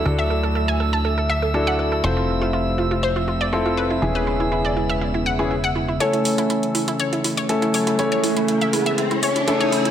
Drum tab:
HH |----------------|----------------|----------------|xxoxxxoxxxoxxxox|

HH |xxoxxxoxxxoxxxox|